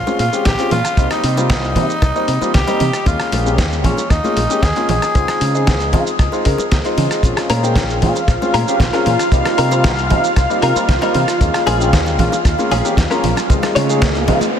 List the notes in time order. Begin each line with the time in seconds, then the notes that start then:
Already playing: F4
0.07 G#3 C4 C#4 F4, high bongo, high conga, shaker
0.19 A#2 F4, open hi-hat, high conga
0.32 G#3 C4 C#4 G4, shaker
0.45 A#1 G4, kick, snare, closed hi-hat, high bongo, shaker
0.59 G#3 C4 C#4 F4, closed hi-hat, shaker
0.71 A#2 F4, open hi-hat, high bongo, low conga
0.85 cross-stick, closed hi-hat, shaker
0.97 C2 G3 A#3 C4 D#4, kick, closed hi-hat, shaker
1.11 D#4, cross-stick, closed hi-hat, high bongo, shaker
1.24 C3, open hi-hat
1.37 G3 A#3 C4 F4, high bongo, shaker
1.50 C2 D#4, kick, snare, closed hi-hat, shaker
1.64 shaker
1.75 C3 G3 A#3 C4 D#4, kick, open hi-hat, high bongo, low conga
1.90 shaker
2.02 C2, kick, cross-stick, closed hi-hat, high bongo, shaker
2.15 G3 A#3 C4 D#4, shaker
2.28 C3, open hi-hat
2.41 G3 A#3 C4 F4, muted fingered electric bass stroke, high bongo, shaker
2.54 C2 G4, kick, snare, closed hi-hat, shaker
2.67 G3 A#3 C4 D#4, closed hi-hat, high bongo, shaker
2.80 C3, open hi-hat, low conga
2.93 cross-stick, closed hi-hat, shaker
3.06 D#2 G#3 A#3 C#4 F4, kick, closed hi-hat, high bongo, shaker
3.20 cross-stick, closed hi-hat, shaker
3.32 A#1, open hi-hat, high bongo, high conga
3.45 G#3 A#3 C#4 G4, shaker
3.58 D#2, kick, snare, closed hi-hat, shaker
3.72 high bongo, shaker
3.84 A#1 G#3 A#3 C#4 F4, kick, open hi-hat, low conga
3.97 high bongo, shaker
4.10 D#2 D#4, kick, cross-stick, closed hi-hat, shaker
4.24 G#3 A#3 C#4 F4, high conga, shaker
4.37 A#1, open hi-hat, high bongo, high conga
4.50 G#3 A#3 C#4 G4, shaker
4.63 D#2 G#4, kick, snare, closed hi-hat, high bongo, shaker
4.76 G#3 A#3 C#4 F4, closed hi-hat, shaker
4.89 A#1 G#4, open hi-hat, low conga
5.02 cross-stick, closed hi-hat, high bongo, shaker
5.15 C#2 G#3 C4 D#4 F4, kick, closed hi-hat, shaker
5.28 cross-stick, closed hi-hat, high bongo, shaker
5.41 C#3, open hi-hat, high conga
5.54 G#3 C4 D#4 G#4, shaker
5.67 C#2, kick, snare, closed hi-hat, high bongo, shaker
5.80 closed hi-hat, shaker
5.93 C#3 G#3 C4 D#4 F4, kick, open hi-hat, high bongo, low conga
6.07 shaker
6.19 C#2, kick, cross-stick, closed hi-hat, shaker
6.32 G#3 C4 D#4 F4, high bongo, shaker
6.45 C#3 G#3 C4 D#4 A#4, kick, open hi-hat
6.58 muted fingered electric bass stroke, high bongo, shaker
6.72 C#2, kick, snare, closed hi-hat, shaker
6.84 G#3 C4 D#4 F4, closed hi-hat, shaker
6.97 C#3, open hi-hat, high bongo, low conga
7.11 cross-stick, closed hi-hat, shaker
7.23 A#1 G#3 C4 C#4 F4 F5, kick, closed hi-hat, shaker
7.37 muted clean electric guitar stroke, cross-stick, closed hi-hat, shaker
7.50 A#2 C#4 G#4 A#4, open hi-hat, high bongo, high conga
7.63 G#3 C#4 C5 G5, shaker
7.76 A#1, kick, snare, closed hi-hat, high bongo, shaker
7.90 shaker
8.02 A#2 G#3 C4 C#4 F4, kick, open hi-hat, low conga
8.15 muted clean electric guitar stroke, high bongo, shaker
8.28 A#1, kick, cross-stick, closed hi-hat, shaker
8.41 G#3 C4 C#4 F4, high bongo, high conga, shaker
8.54 A#2 C#4 G#4 A#4, open hi-hat, high conga
8.67 G#3 C4 C#4 G4, shaker
8.80 A#1, kick, snare, closed hi-hat, high bongo, shaker
8.93 G#3 C4 C#4 F4 G#4 A#4, closed hi-hat, shaker
9.06 A#2, open hi-hat, high bongo, low conga
9.19 cross-stick, closed hi-hat, shaker
9.32 C2 G3 A#3 C4 D#4, kick, closed hi-hat, shaker
9.45 muted clean electric guitar stroke, cross-stick, closed hi-hat, high bongo, shaker
9.58 C3 C4 D#4 A#4, open hi-hat
9.71 G3 A#3 C4 F4, high bongo, shaker
9.84 C2, kick, snare, closed hi-hat, shaker
9.98 shaker
10.10 C3 G3 A#3 C4 D#4, kick, open hi-hat, high bongo, low conga
10.24 muted clean electric guitar stroke, shaker
10.36 C2, kick, cross-stick, closed hi-hat, high bongo, shaker
10.49 G3 A#3 C4 D#4, shaker
10.62 C3 C4 D#4 A#4, open hi-hat
10.76 G3 A#3 C4 F4, muted fingered electric bass stroke, high bongo, shaker
10.89 C2, kick, snare, closed hi-hat, shaker
11.01 G3 A#3 C4 D#4 A#4, closed hi-hat, high bongo, shaker
11.14 C3, open hi-hat, low conga
11.28 cross-stick, closed hi-hat, shaker
11.41 D#2 G#3 A#3 C#4 F4, kick, closed hi-hat, riser, high bongo, shaker
11.54 muted clean electric guitar stroke, cross-stick, closed hi-hat, shaker
11.67 A#1 C#4 F4 G#4, open hi-hat, high bongo, high conga
11.80 G#3 A#3 C#4 G5, shaker
11.93 D#2, kick, snare, closed hi-hat, shaker
12.06 high bongo, shaker
12.19 A#1 G#3 A#3 C#4 F4, kick, open hi-hat, low conga
12.32 muted clean electric guitar stroke, high bongo, shaker
12.45 D#2, kick, cross-stick, closed hi-hat, shaker
12.58 G#3 A#3 C#4 F4, high conga, shaker
12.71 A#1 C#4 F4 G#4, open hi-hat, high bongo, high conga
12.84 G#3 A#3 C#4 G4, shaker
12.97 D#2, kick, snare, closed hi-hat, high bongo, shaker
13.10 G#3 A#3 C#4 F4 A#4, closed hi-hat, shaker
13.24 A#1, open hi-hat, low conga
13.37 cross-stick, closed hi-hat, high bongo, shaker
13.49 C#2 G#3 C4 D#4 F4, kick, closed hi-hat, shaker
13.63 muted clean electric guitar stroke, cross-stick, closed hi-hat, high bongo, shaker
13.75 C#3 C#4 F4 C#5, open hi-hat, high conga
13.89 G#3 D#4 G#4, shaker
14.02 C#2, kick, snare, closed hi-hat, high bongo, shaker
14.15 closed hi-hat, shaker
14.28 C#3 G#3 C4 D#4 F4, kick, open hi-hat, high bongo, low conga
14.41 muted clean electric guitar stroke, closed hi-hat, high conga, shaker